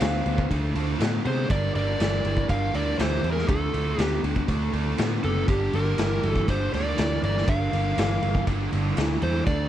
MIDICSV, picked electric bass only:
0, 0, Header, 1, 2, 480
1, 0, Start_track
1, 0, Tempo, 497925
1, 1447, Time_signature, 4, 2, 24, 8
1, 9337, End_track
2, 0, Start_track
2, 0, Title_t, "Picked electric bass"
2, 0, Program_c, 0, 34
2, 11, Note_on_c, 0, 38, 85
2, 193, Note_off_c, 0, 38, 0
2, 251, Note_on_c, 0, 38, 83
2, 433, Note_off_c, 0, 38, 0
2, 488, Note_on_c, 0, 38, 80
2, 671, Note_off_c, 0, 38, 0
2, 723, Note_on_c, 0, 38, 91
2, 908, Note_off_c, 0, 38, 0
2, 961, Note_on_c, 0, 45, 88
2, 1146, Note_off_c, 0, 45, 0
2, 1209, Note_on_c, 0, 48, 89
2, 1391, Note_off_c, 0, 48, 0
2, 1446, Note_on_c, 0, 31, 96
2, 1630, Note_off_c, 0, 31, 0
2, 1689, Note_on_c, 0, 31, 90
2, 1872, Note_off_c, 0, 31, 0
2, 1928, Note_on_c, 0, 31, 90
2, 2111, Note_off_c, 0, 31, 0
2, 2163, Note_on_c, 0, 31, 76
2, 2348, Note_off_c, 0, 31, 0
2, 2406, Note_on_c, 0, 31, 91
2, 2590, Note_off_c, 0, 31, 0
2, 2640, Note_on_c, 0, 38, 78
2, 2826, Note_off_c, 0, 38, 0
2, 2884, Note_on_c, 0, 38, 86
2, 3068, Note_off_c, 0, 38, 0
2, 3115, Note_on_c, 0, 40, 93
2, 3303, Note_off_c, 0, 40, 0
2, 3363, Note_on_c, 0, 38, 96
2, 3548, Note_off_c, 0, 38, 0
2, 3606, Note_on_c, 0, 38, 90
2, 3790, Note_off_c, 0, 38, 0
2, 3842, Note_on_c, 0, 38, 82
2, 4027, Note_off_c, 0, 38, 0
2, 4082, Note_on_c, 0, 38, 78
2, 4267, Note_off_c, 0, 38, 0
2, 4323, Note_on_c, 0, 38, 89
2, 4508, Note_off_c, 0, 38, 0
2, 4563, Note_on_c, 0, 38, 82
2, 4748, Note_off_c, 0, 38, 0
2, 4812, Note_on_c, 0, 45, 86
2, 4993, Note_off_c, 0, 45, 0
2, 5054, Note_on_c, 0, 30, 88
2, 5235, Note_off_c, 0, 30, 0
2, 5285, Note_on_c, 0, 31, 93
2, 5469, Note_off_c, 0, 31, 0
2, 5531, Note_on_c, 0, 31, 84
2, 5713, Note_off_c, 0, 31, 0
2, 5769, Note_on_c, 0, 31, 89
2, 5952, Note_off_c, 0, 31, 0
2, 6014, Note_on_c, 0, 31, 83
2, 6194, Note_off_c, 0, 31, 0
2, 6249, Note_on_c, 0, 31, 90
2, 6431, Note_off_c, 0, 31, 0
2, 6492, Note_on_c, 0, 38, 80
2, 6673, Note_off_c, 0, 38, 0
2, 6733, Note_on_c, 0, 38, 84
2, 6914, Note_off_c, 0, 38, 0
2, 6970, Note_on_c, 0, 31, 91
2, 7152, Note_off_c, 0, 31, 0
2, 7209, Note_on_c, 0, 31, 93
2, 7391, Note_off_c, 0, 31, 0
2, 7452, Note_on_c, 0, 31, 83
2, 7633, Note_off_c, 0, 31, 0
2, 7689, Note_on_c, 0, 31, 88
2, 7871, Note_off_c, 0, 31, 0
2, 7931, Note_on_c, 0, 31, 76
2, 8112, Note_off_c, 0, 31, 0
2, 8170, Note_on_c, 0, 31, 84
2, 8351, Note_off_c, 0, 31, 0
2, 8413, Note_on_c, 0, 31, 80
2, 8593, Note_off_c, 0, 31, 0
2, 8654, Note_on_c, 0, 38, 95
2, 8833, Note_off_c, 0, 38, 0
2, 8889, Note_on_c, 0, 40, 87
2, 9070, Note_off_c, 0, 40, 0
2, 9128, Note_on_c, 0, 38, 100
2, 9309, Note_off_c, 0, 38, 0
2, 9337, End_track
0, 0, End_of_file